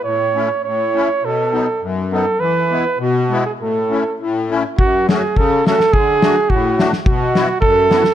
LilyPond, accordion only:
<<
  \new Staff \with { instrumentName = "Accordion" } { \time 2/4 \key a \major \tempo 4 = 103 r8 <a cis' e'>8 r8 <a cis' e'>8 | r8 <fis b dis'>8 r8 <fis b dis'>8 | r8 <gis b e'>8 r8 <gis b e'>8 | r8 <a cis' e'>8 r8 <a cis' e'>8 |
\key fis \minor r8 <a cis' fis'>8 r8 <a cis' fis'>8 | r8 <a d' fis'>8 r8 <a d' fis'>8 | r8 <b e' fis'>8 r8 <b e' fis'>8 | }
  \new Staff \with { instrumentName = "Accordion" } { \clef bass \time 2/4 \key a \major a,4 a,4 | b,4 fis,4 | e4 b,4 | a,4 a,4 |
\key fis \minor fis,4 cis4 | d4 a,4 | b,4 fis,4 | }
>>